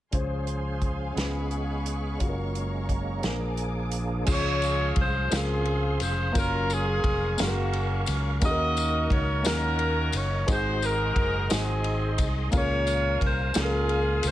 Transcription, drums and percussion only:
0.12 kick, closed hi-hat
0.47 closed hi-hat
0.81 kick, closed hi-hat
1.17 snare, closed hi-hat
1.51 closed hi-hat
1.86 closed hi-hat
2.20 kick, closed hi-hat
2.55 closed hi-hat
2.89 kick, closed hi-hat
3.23 snare, closed hi-hat
3.57 closed hi-hat
3.91 closed hi-hat
4.26 kick, crash, tambourine
4.62 ride, tambourine
4.96 kick, ride
5.31 snare, ride, tambourine
5.65 ride
6.00 ride, tambourine
6.35 kick, ride, tambourine
6.70 ride, tambourine
7.04 kick, ride
7.38 snare, ride, tambourine
7.73 ride
8.06 ride, tambourine
8.41 kick, ride, tambourine
8.77 ride, tambourine
9.10 kick, ride
9.44 snare, ride, tambourine
9.79 ride
10.12 ride, tambourine
10.48 kick, ride, tambourine
10.82 ride, tambourine
11.16 kick, ride
11.50 snare, ride, tambourine
11.84 ride
12.18 kick, ride, tambourine
12.52 kick, ride, tambourine
12.87 ride, tambourine
13.21 kick, ride
13.54 snare, ride, tambourine
13.89 ride
14.23 ride, tambourine

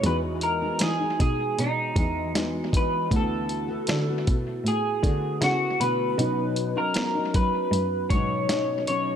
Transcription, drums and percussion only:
0.04 closed hi-hat
0.41 closed hi-hat
0.79 snare, closed hi-hat
1.20 kick, closed hi-hat
1.59 closed hi-hat
1.96 kick, closed hi-hat
2.35 snare, closed hi-hat
2.73 kick, closed hi-hat
3.11 kick, closed hi-hat
3.49 closed hi-hat
3.87 snare, closed hi-hat
4.27 kick, closed hi-hat
4.66 closed hi-hat
5.03 kick, closed hi-hat
5.42 snare, closed hi-hat
5.81 closed hi-hat
6.19 closed hi-hat
6.56 closed hi-hat
6.94 snare, closed hi-hat
7.34 kick, closed hi-hat
7.73 closed hi-hat
8.10 kick, closed hi-hat
8.49 snare, closed hi-hat
8.87 closed hi-hat

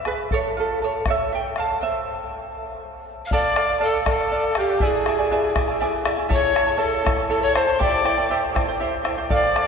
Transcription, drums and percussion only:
0.05 bombo rim
0.18 bombo rim
0.31 bombo rim, bombo low
1.06 bombo rim, bombo low
1.32 bombo rim
1.56 bombo rim
1.69 bombo rim
3.31 bombo low
3.44 bombo rim
3.56 bombo rim
3.94 bombo rim
4.06 bombo rim, bombo low
4.19 bombo rim
4.44 bombo rim
4.55 bombo rim
4.80 bombo low
4.94 bombo rim
5.06 bombo rim
5.45 bombo rim
5.56 bombo rim, bombo low
5.69 bombo rim
5.94 bombo rim
6.05 bombo rim
6.31 bombo low
6.44 bombo rim
6.56 bombo rim
6.95 bombo rim
7.07 bombo rim, bombo low
7.18 bombo rim
7.43 bombo rim
7.55 bombo rim
7.81 bombo low
8.06 bombo rim
8.31 bombo rim
8.44 bombo rim
8.56 bombo rim, bombo low
9.05 bombo rim
9.30 bombo low
9.44 bombo rim
9.56 bombo rim

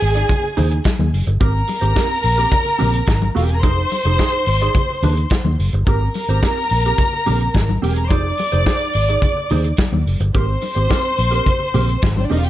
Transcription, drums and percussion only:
0.01 open hi-hat
0.17 closed hi-hat
0.29 kick, closed hi-hat, muted conga, low conga
0.57 open hi-hat, muted conga, low conga
0.71 closed hi-hat
0.84 kick, snare, closed hi-hat, high conga
1.00 high conga
1.14 open hi-hat
1.27 closed hi-hat
1.41 kick, closed hi-hat, muted conga
1.67 open hi-hat, muted conga
1.82 closed hi-hat
1.96 kick, snare, closed hi-hat, high conga
2.23 open hi-hat
2.39 closed hi-hat
2.52 kick, closed hi-hat, low conga
2.79 open hi-hat, muted conga, low conga
2.93 closed hi-hat
3.06 kick, snare, closed hi-hat, high conga
3.22 high conga
3.36 open hi-hat
3.49 closed hi-hat
3.63 kick, closed hi-hat, muted conga
3.90 open hi-hat, muted conga
4.05 closed hi-hat
4.19 kick, snare, closed hi-hat, high conga
4.46 open hi-hat
4.62 closed hi-hat
4.75 kick, closed hi-hat, muted conga, low conga
5.02 open hi-hat, muted conga, low conga
5.17 closed hi-hat
5.30 kick, snare, closed hi-hat, high conga
5.45 high conga
5.60 open hi-hat
5.73 closed hi-hat
5.87 kick, closed hi-hat, muted conga
6.14 open hi-hat, muted conga
6.29 closed hi-hat
6.43 kick, snare, closed hi-hat, high conga
6.70 open hi-hat
6.86 closed hi-hat
6.98 kick, closed hi-hat, muted conga, low conga
7.26 open hi-hat, muted conga, low conga
7.41 closed hi-hat
7.54 kick, snare, closed hi-hat, high conga
7.69 high conga
7.83 open hi-hat
7.96 closed hi-hat
8.10 kick, closed hi-hat, muted conga
8.37 open hi-hat, muted conga
8.53 closed hi-hat
8.66 kick, snare, closed hi-hat, high conga
8.93 open hi-hat
9.09 closed hi-hat
9.22 kick, closed hi-hat, muted conga, low conga
9.50 open hi-hat, muted conga, low conga
9.64 closed hi-hat
9.77 kick, snare, closed hi-hat, high conga
9.93 high conga
10.07 open hi-hat
10.20 closed hi-hat
10.35 kick, closed hi-hat, muted conga
10.61 open hi-hat, muted conga
10.76 closed hi-hat
10.91 kick, snare, closed hi-hat, high conga
11.17 open hi-hat
11.34 closed hi-hat
11.46 kick, closed hi-hat, low conga
11.74 open hi-hat, muted conga, low conga
11.89 closed hi-hat
12.02 kick, snare, closed hi-hat, high conga
12.17 high conga
12.31 open hi-hat
12.44 closed hi-hat

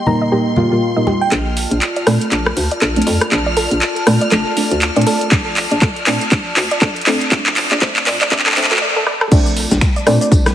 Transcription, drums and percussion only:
0.06 low conga
0.56 low conga
1.07 high conga
1.32 clap, closed hi-hat
1.57 open hi-hat
1.71 closed hi-hat
1.82 clap, closed hi-hat
1.96 closed hi-hat
2.07 cross-stick, open hi-hat
2.21 closed hi-hat
2.32 clap, closed hi-hat
2.46 cross-stick
2.57 open hi-hat
2.71 closed hi-hat
2.82 clap, closed hi-hat
2.96 closed hi-hat
3.02 closed hi-hat
3.07 open hi-hat
3.21 cross-stick, closed hi-hat
3.32 clap, closed hi-hat
3.57 open hi-hat
3.71 closed hi-hat
3.82 clap, closed hi-hat
3.96 closed hi-hat
4.07 cross-stick, open hi-hat
4.21 closed hi-hat
4.32 clap, closed hi-hat
4.57 open hi-hat
4.71 closed hi-hat
4.82 clap, closed hi-hat
4.96 closed hi-hat
5.02 closed hi-hat
5.07 open hi-hat
5.21 closed hi-hat
5.32 kick, clap, closed hi-hat
5.57 clap, open hi-hat
5.71 closed hi-hat
5.82 kick, clap, closed hi-hat
5.96 closed hi-hat
6.07 clap, open hi-hat
6.21 closed hi-hat
6.32 kick, clap, closed hi-hat
6.57 clap, open hi-hat
6.71 closed hi-hat
6.82 kick, clap, closed hi-hat
6.96 closed hi-hat
7.01 closed hi-hat
7.07 clap, open hi-hat
7.21 closed hi-hat
7.32 kick, clap, closed hi-hat
7.46 clap
7.57 clap, open hi-hat
7.71 clap, closed hi-hat
7.82 kick, clap, closed hi-hat
7.96 clap, closed hi-hat
8.07 clap, open hi-hat
8.21 clap, closed hi-hat
8.32 kick, clap, closed hi-hat
8.39 clap
8.46 clap
8.51 clap
8.57 clap, open hi-hat
8.64 clap
8.71 clap, closed hi-hat
8.76 clap
9.07 cross-stick
9.21 cross-stick
9.31 kick, closed hi-hat, tambourine, crash, shaker
9.46 closed hi-hat, shaker
9.56 open hi-hat, tambourine
9.71 snare, closed hi-hat, high conga, shaker
9.81 finger snap, kick, snare, closed hi-hat, tambourine, shaker
9.96 closed hi-hat, shaker
10.07 cross-stick, open hi-hat, tambourine
10.21 closed hi-hat, shaker
10.32 kick, closed hi-hat, tambourine, shaker
10.46 cross-stick, snare, closed hi-hat, high conga, shaker

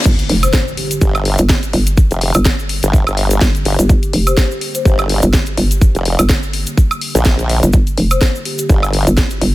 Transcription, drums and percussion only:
0.05 kick, crash, cabasa
0.19 closed hi-hat, cabasa
0.29 open hi-hat
0.43 closed hi-hat, cabasa, high woodblock
0.53 kick, snare, cabasa
0.68 cabasa
0.77 open hi-hat
0.91 closed hi-hat, cabasa
1.01 kick, cabasa
1.15 closed hi-hat, cabasa, high woodblock
1.25 open hi-hat
1.38 closed hi-hat, cabasa
1.49 kick, snare, cabasa
1.63 closed hi-hat, cabasa
1.73 open hi-hat
1.87 closed hi-hat, cabasa
1.97 kick, cabasa
2.11 closed hi-hat, cabasa
2.21 open hi-hat
2.34 closed hi-hat, cabasa, high woodblock
2.45 kick, snare, cabasa
2.59 cabasa
2.69 open hi-hat
2.83 closed hi-hat, cabasa
2.93 kick, cabasa
3.07 closed hi-hat, cabasa, high woodblock
3.17 open hi-hat
3.30 closed hi-hat, cabasa
3.41 kick, snare, cabasa
3.55 closed hi-hat, cabasa
3.65 open hi-hat
3.79 closed hi-hat, cabasa
3.89 kick, cabasa
4.03 closed hi-hat, cabasa
4.13 open hi-hat
4.27 closed hi-hat, cabasa, high woodblock
4.37 kick, snare, cabasa
4.51 cabasa
4.61 open hi-hat
4.75 closed hi-hat, cabasa
4.85 kick, cabasa
4.99 closed hi-hat, cabasa, high woodblock
5.09 open hi-hat
5.22 closed hi-hat, cabasa
5.33 kick, snare, cabasa
5.46 closed hi-hat, cabasa
5.57 open hi-hat
5.71 closed hi-hat, cabasa
5.81 kick, cabasa
5.95 closed hi-hat, cabasa
6.05 open hi-hat
6.19 closed hi-hat, cabasa, high woodblock
6.29 kick, snare, cabasa
6.43 cabasa
6.53 open hi-hat
6.67 closed hi-hat, cabasa
6.78 kick, cabasa
6.91 closed hi-hat, cabasa, high woodblock
7.01 open hi-hat
7.15 closed hi-hat, cabasa
7.25 kick, snare, cabasa
7.39 closed hi-hat, cabasa
7.49 open hi-hat
7.63 closed hi-hat, cabasa
7.73 kick, cabasa
7.87 closed hi-hat, cabasa
7.98 open hi-hat
8.11 closed hi-hat, cabasa, high woodblock
8.21 kick, snare, cabasa
8.35 cabasa
8.45 open hi-hat
8.58 closed hi-hat, cabasa
8.69 kick, cabasa
8.83 closed hi-hat, cabasa, high woodblock
8.93 open hi-hat
9.07 closed hi-hat, cabasa
9.17 kick, snare, cabasa
9.30 closed hi-hat, cabasa
9.41 open hi-hat

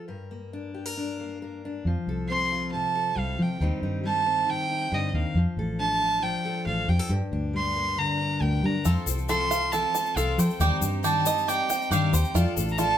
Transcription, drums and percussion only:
8.85 shaker
9.07 shaker
9.18 shaker
9.29 shaker
9.51 shaker
9.72 shaker
9.95 shaker
10.06 shaker
10.17 shaker
10.39 shaker
10.50 shaker
10.60 shaker
10.82 shaker
11.04 shaker
11.26 shaker
11.38 shaker
11.49 shaker
11.70 shaker
11.81 shaker
11.92 shaker
12.14 shaker
12.25 shaker
12.36 shaker
12.57 shaker
12.68 shaker
12.78 shaker

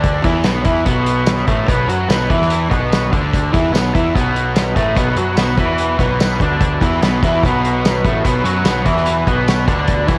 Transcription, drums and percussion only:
0.04 kick, closed hi-hat
0.24 kick, closed hi-hat
0.44 snare, closed hi-hat, tambourine
0.65 kick, closed hi-hat
0.86 kick, closed hi-hat
1.06 closed hi-hat
1.27 snare, closed hi-hat, tambourine
1.48 kick, closed hi-hat
1.69 kick, closed hi-hat
1.90 closed hi-hat
2.10 snare, closed hi-hat, tambourine
2.30 kick, closed hi-hat
2.42 snare
2.50 closed hi-hat
2.71 kick, closed hi-hat
2.92 snare, closed hi-hat, tambourine
3.13 kick, closed hi-hat
3.33 kick, closed hi-hat
3.54 kick, closed hi-hat
3.75 snare, closed hi-hat, tambourine
3.95 kick, closed hi-hat
4.15 kick, closed hi-hat
4.36 closed hi-hat
4.56 snare, closed hi-hat, tambourine
4.76 kick, snare, closed hi-hat
4.96 kick, closed hi-hat
5.16 closed hi-hat
5.37 snare, closed hi-hat, tambourine
5.57 kick, closed hi-hat
5.78 closed hi-hat
5.99 kick, closed hi-hat
6.20 snare, closed hi-hat, tambourine
6.40 kick, closed hi-hat
6.61 kick, closed hi-hat
6.81 kick, closed hi-hat
7.02 snare, closed hi-hat, tambourine
7.23 kick, closed hi-hat
7.43 kick, closed hi-hat
7.65 closed hi-hat
7.85 snare, closed hi-hat, tambourine
8.05 kick, closed hi-hat
8.25 kick, closed hi-hat
8.45 closed hi-hat
8.65 snare, closed hi-hat, tambourine
8.86 kick, closed hi-hat
8.97 snare
9.06 closed hi-hat
9.27 kick, closed hi-hat
9.48 snare, closed hi-hat, tambourine
9.68 kick, closed hi-hat
9.87 kick, closed hi-hat
10.08 kick, closed hi-hat

